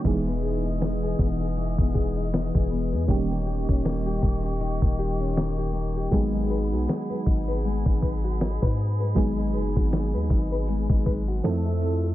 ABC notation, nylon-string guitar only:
X:1
M:4/4
L:1/16
Q:"Swing 16ths" 1/4=79
K:G#m
V:1 name="Nylon-string guitar"
E, B, G D B, G B, G E, B, G D B, G B, G | D, A, =G C A, G A, G D, A, G C A, G A, G | G, D B F D B D B G, D B F D B D B | G, D B F D B D B G, D B F =F, =A =C A |]